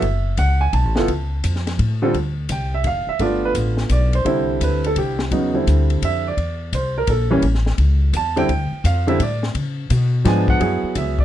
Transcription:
Already playing: E5
0.02 F#1, kick, ride
0.37 C#2 F#5, kick, hi-hat pedal, ride
0.61 G#5
0.73 B1 A5, kick, ride
0.85 A1
0.96 F#1 B3 E4 F4 A4, snare
1.08 C#2, kick, ride
1.44 F2, kick, hi-hat pedal, ride
1.55 snare
1.67 snare, ride
1.79 A2, kick, ride
2.02 D3 G3 C4 F4 A4
2.14 D2, kick, ride
2.49 C2 G5, kick, hi-hat pedal, ride
2.74 E5
2.84 F1 F5, kick, ride
3.07 E5, muted upright bass stroke
3.19 G1 A3 B3 D4 F4 D5, kick, ride
3.45 B4
3.55 A1, kick, hi-hat pedal, ride
3.77 snare
3.89 B1 D5, kick, hi-hat pedal, ride
4.13 C5, ride
4.25 C2 D3 G3 C4 E4, kick, ride
4.61 D2 B4, kick, hi-hat pedal, ride
4.84 A4, ride
4.96 C2 G4, kick, ride
5.19 snare
5.31 E2 C#3 F#3 B3 D#4, kick, ride
5.54 D3 G3 C4 E4
5.67 D2, kick, hi-hat pedal, ride
5.90 ride
6.02 F2 E5, kick, ride
6.28 D5
6.37 E2, kick, ride
6.72 C2 C5, kick, hi-hat pedal, ride
6.98 A#4
7.07 A#1 A4, kick, ride
7.30 E3 G3 A#3 C#4
7.42 A1, kick, ride
7.54 snare
7.66 snare
7.78 C#2, kick, ride
8.13 E2 A5, kick, hi-hat pedal, ride
8.36 D3 G3 C4 E4 G5, ride
8.49 D2, kick, ride
8.72 muted upright bass stroke
8.84 F2 F5, kick, hi-hat pedal, ride
9.07 D3 G3 C4 E4 E5, ride
9.19 A2 D5, kick, ride
9.43 snare
9.55 C#3, kick, ride
9.90 B2, kick, hi-hat pedal, ride
10.25 G#2 F3 G#3 B3 D4 G#5, kick, snare, ride
10.48 F#5, kick
10.60 F#2 F#3 B3 E4 G#4, kick, ride
10.83 muted upright bass stroke
10.95 C#2 E5, kick, hi-hat pedal, ride
11.19 D5, kick

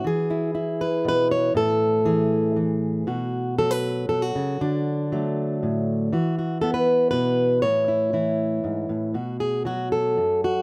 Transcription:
0.04 E3 G#4
0.30 E4
0.55 E4
0.81 B4
1.05 B2 B4
1.31 C#5
1.55 A2 A4
2.05 E3 G#4
2.56 E3
3.07 B2 F#4
3.59 F#3 A4
3.71 B4
4.09 B2 A4
4.22 F#4
4.35 C#3
4.61 D3 D4
5.12 F#3 A3
5.63 A2
6.13 E3 F#4
6.39 F#4
6.62 B3 A4
6.74 B4
7.11 B2 B4
7.62 A2 C#5
7.88 E4
8.13 E3 E4
8.64 G#2
8.89 A2
9.14 B2 F#4
9.40 G#4
9.65 F#3 F#4
9.92 A4
10.17 F#2
10.44 F#4

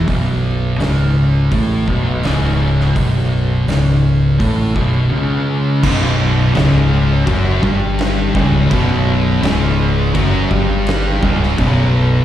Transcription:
0.07 B0 B1 B2, kick, open hi-hat
0.79 C#1 C#2 C#3, snare, open hi-hat
1.52 A1 A2 A3, kick, open hi-hat
1.88 B0 B1 B2, kick
2.23 C#1 C#2 C#3, snare, open hi-hat
2.80 snare
2.95 B0 B1 B2, kick, open hi-hat
3.67 C#1 C#2 C#3, snare, open hi-hat
4.39 A1 A2 A3, kick, open hi-hat
4.75 B0 B1 B2, kick
5.11 C#2 C#3
5.83 B0 B1 B2, kick, crash
6.55 C#1 C#2 C#3, snare, crash
7.27 F#1 F#2 F#3, kick, crash
7.63 G1 G2 G3, kick
7.99 snare, crash
8.35 C#1 C#2 C#3, kick
8.71 B0 B1 B2, kick, crash
9.43 C#1 C#2 C#3, snare, crash
10.15 F#1 F#2 F#3, kick, crash
10.50 G1 G2 G3, kick
10.87 snare, crash
11.22 C#1 C#2 C#3, kick
11.43 snare
11.58 B0 B1 B2, kick, crash

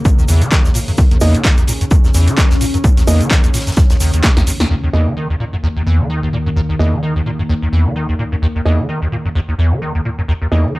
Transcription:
Already playing: D#2 C#3 A#3
0.05 D#2, kick, closed hi-hat, shaker
0.18 D#2, shaker
0.28 E2, closed hi-hat, open hi-hat, shaker
0.41 D#3, closed hi-hat, shaker
0.51 D#3, kick, snare, clap, closed hi-hat, shaker
0.65 D#2, snare, shaker
0.74 A#2, closed hi-hat, open hi-hat, shaker
0.88 F#2, open hi-hat, shaker
0.97 D#2 C#4, kick, closed hi-hat, shaker
1.11 D#2, closed hi-hat
1.21 E2 A#3 D#4 D#5, snare, closed hi-hat, open hi-hat, shaker
1.35 D#3, closed hi-hat, shaker
1.44 D#3, kick, snare, clap, closed hi-hat, shaker
1.58 D#2, closed hi-hat, shaker
1.67 A#2, closed hi-hat, open hi-hat, shaker
1.81 F#2, closed hi-hat, shaker
1.91 D#2, kick, closed hi-hat, shaker
2.04 D#2, snare, shaker
2.14 E2, snare, closed hi-hat, open hi-hat, shaker
2.27 D#3, closed hi-hat, shaker
2.37 D#3, kick, clap, closed hi-hat, shaker
2.50 D#2, snare, closed hi-hat, shaker
2.61 A#2, open hi-hat, shaker
2.74 F#2, closed hi-hat, shaker
2.84 D#2, kick, closed hi-hat, shaker
2.97 D#2, snare, closed hi-hat, shaker
3.07 E2 A#3 D#4 D#5, closed hi-hat, open hi-hat, shaker
3.21 D#3, closed hi-hat, shaker
3.30 D#3, kick, snare, clap, closed hi-hat, shaker
3.44 D#2, closed hi-hat, shaker
3.54 A#2, snare, closed hi-hat, open hi-hat, shaker
3.61 snare, closed hi-hat
3.67 F#2, snare, closed hi-hat, shaker
3.72 snare, closed hi-hat
3.77 D#2, kick, snare, shaker
3.90 D#2, snare, closed hi-hat, shaker
4.00 D#2, snare, closed hi-hat, open hi-hat, shaker
4.13 D#2, closed hi-hat, shaker
4.23 C#3, kick, snare, clap, closed hi-hat, shaker
4.37 D#2, snare, closed hi-hat, shaker
4.47 D#2, closed hi-hat, open hi-hat, shaker
4.60 D#2, snare, open hi-hat, shaker
4.70 D#2 D#3 A#3
4.83 D#2
4.93 E2 A#3 D#4 D#5
5.07 D#3
5.17 D#3
5.30 D#2
5.40 A#2
5.53 F#2
5.63 D#2
5.76 D#2
5.86 E2
6.00 D#3
6.10 D#3
6.23 D#2
6.33 A#2
6.46 F#2
6.56 D#2
6.69 D#2
6.79 E2 A#3 D#4 D#5
6.93 D#3
7.03 D#3
7.16 D#2
7.26 A#2
7.39 F#2
7.49 D#2
7.62 D#2
7.72 E2
7.86 D#3
7.96 D#3
8.09 D#2
8.19 A#2
8.32 F#2
8.42 D#2
8.55 D#2
8.65 E2 A#3 D#4 D#5
8.79 D#3
8.89 D#3
9.02 D#2
9.12 A#2
9.25 F#2
9.35 D#2
9.48 D#2
9.59 E2
9.72 D#3
9.82 D#3
9.95 D#2
10.05 A#2
10.18 F#2
10.28 D#2
10.42 D#2
10.52 E2 A#3 D#4 D#5
10.65 D#3
10.75 D#3

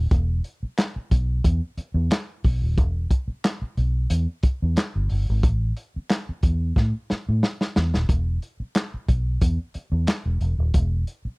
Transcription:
0.11 E1, kick, closed hi-hat
0.44 closed hi-hat
0.63 muted fingered electric bass stroke
0.78 snare, clap, closed hi-hat
0.96 muted fingered electric bass stroke
1.11 B1, kick, closed hi-hat
1.44 E2, kick, closed hi-hat
1.78 muted fingered electric bass stroke, closed hi-hat
1.94 E2
2.11 snare, clap, closed hi-hat
2.44 B1, kick, open hi-hat
2.62 D#1
2.78 E1, kick, closed hi-hat
3.11 kick, closed hi-hat
3.28 muted fingered electric bass stroke
3.44 snare, clap, closed hi-hat
3.62 muted fingered electric bass stroke
3.77 B1, closed hi-hat
4.10 E2, closed hi-hat
4.43 muted fingered electric bass stroke, kick, closed hi-hat
4.62 E2
4.76 snare, clap, closed hi-hat
4.96 G1
5.09 G1, open hi-hat
5.29 G#1
5.43 A1, kick, closed hi-hat
5.77 closed hi-hat
5.96 muted fingered electric bass stroke
6.10 snare, clap, closed hi-hat
6.29 muted fingered electric bass stroke
6.43 E2, kick, closed hi-hat
6.76 A2, kick, snare
7.10 muted fingered electric bass stroke, snare
7.29 A2
7.43 snare
7.61 snare
7.76 E2, snare
7.94 D#1, snare
8.09 E1, kick, closed hi-hat
8.42 closed hi-hat
8.60 muted fingered electric bass stroke
8.75 snare, clap, closed hi-hat
8.94 muted fingered electric bass stroke
9.08 B1, kick, closed hi-hat
9.41 E2, kick, closed hi-hat
9.74 muted fingered electric bass stroke, closed hi-hat
9.92 E2
10.07 snare, clap, closed hi-hat
10.26 E1
10.41 E1, closed hi-hat
10.58 D#1
10.74 E1, kick, closed hi-hat
11.07 closed hi-hat
11.25 muted fingered electric bass stroke

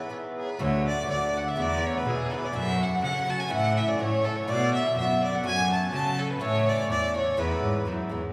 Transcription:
Already playing: B4
0.09 G#2 E3 B3 E4
0.36 G#4
0.45 B4 C#5
0.50 B4
0.59 D2 A2 D3 A3 F#4 C#5
0.79 E5
0.87 D5
1.07 D2 A2 D3 A3 F#4 D5
1.11 D5
1.33 A2 D3 A3 F#4 F#5
1.38 F#5
1.47 E5
1.56 E2 G#2 E3 B3 E4
1.60 D5
1.85 C#5
1.97 B4
2.04 G#2 B2 E3 B3 E4 G#4
2.09 G#4
2.30 G#2 E3 B3 E4 A4 B4
2.34 B4
2.44 D5
2.52 F#2 A2 F#3 C#4 F#4 E5
2.80 F#5
3.00 A2 C#3 F#3 C#4 F#4 F#5
3.27 A2 F#3 C#4 F#4 A5
3.38 G#5
3.49 A2 E3 C#4 E4 F#5
3.77 E5
3.88 D5
3.99 A2 E3 C#4 E4 C#5
4.24 A2 E3 C#4 E4 A4
4.36 C#5
4.46 B2 D3 B3 F#4 D5
4.74 E5
4.95 F#2 B2 D3 B3 F#4 E5
5.20 B2 D3 B3 F#4 D5
5.35 F#5
5.43 F#2 A2 F#3 C#4 F#4 G#5
5.71 A5
5.91 A2 C#3 F#3 C#4 F#4 A5
6.17 A2 F#3 C#4 F#4 A4
6.30 B4
6.40 A2 E3 C#4 E4 C#5
6.69 D5
6.89 E2 A2 E3 C#4 E4 D5
7.15 A2 E3 C#4 E4 C#5
7.37 E2 G#2 E3 B3 E4 B4
7.63 G#2
7.85 F#2 G#2 E3 B3 E4
8.09 E2 G#2 E3 B3 E4

